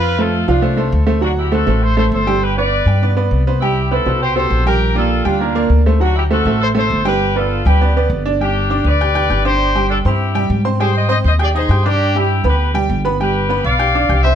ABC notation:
X:1
M:4/4
L:1/8
Q:1/4=200
K:Gmix
V:1 name="Horn section"
[FB] [FA]2 [DF]3 z2 | [D^F] [EG] [FA]2 [Ac] [Ac] [Ac]2 | [GB] [Bd]4 z3 | [EG]2 [EA]2 [Gc] [Ac]2 [G_B]- |
[G_B] [FA]2 [DF]3 z2 | [D^F] [EG] [FA]2 [Ac] [Ac]2 [GB]- | [GB] [FA]2 [GB]3 z2 | [DG]3 [Bd]4 [Gc]- |
[Gc]2 [DA] [EG]3 z2 | [_Ac] [c_e] [ce] [ce] [Ad] [Ac]2 [DG]- | [DG] [EG]2 [GB]2 z3 | [GB]3 [df]4 [ce] |]
V:2 name="Upright piano"
[F,Ff] [A,Ac]2 [F,Ff] [A,Ac] [A,Ac]2 [A,Ac] | [^F,^F^f]2 [A,Ac] [A,Ac]2 [A,Ac]2 [G,Gg]- | [G,Gg] [B,Bd]2 [G,Gg] [B,Bd] [B,Bd]2 [B,Bc] | [G,Gg]2 [B,Bc] [B,,Bc]2 [B,,Gc]2 [G,Gg]- |
[G,Gg] [_B,Gd]2 [G,Gg] [B,_Bd] [B,Bd]2 [A,Ac] | [^F,^F^f]2 [A,Ac] [A,Ac]2 [A,Ac]2 [G,Gg]- | [G,Gg] [B,Bd]2 [G,Gg] [B,Bd] [B,Bd]2 [Dd] | [G,Gg]2 [Ddd']2 [Ggg'] [Ggg'] [Ggg'] [Ddd']- |
[Ddd'] [G,Gg]2 [Ccc']2 [G,Gg]2 [Ccc'] | [G,Gg]2 [Ccc']2 [Ggg'] [_E_e_e'] [Ggg'] [Ddd']- | [Ddd'] [G,Gg]2 [B,Bb]2 [G,Gg]2 [B,Bb] | [G,Gg]2 [B,Bb]2 [Ggg'] [Ddd'] [Ggg'] [Ccc'] |]
V:3 name="Upright bass" clef=bass
F,,3 C,,3 D,,2- | D,,3 A,,,3 G,,,2- | G,,,3 G,,3 C,,2- | C,,3 C,,3 _B,,,2- |
_B,,,3 D,,3 D,,2- | D,,3 A,,,3 G,,,2- | G,,,3 D,,3 G,,,2- | G,,,3 D,,3 G,,,2- |
G,,,3 G,,3 _A,,2- | _A,,3 _E,,3 G,,2- | G,,3 D,,3 G,,,2- | G,,,3 B,,,3 C,,2 |]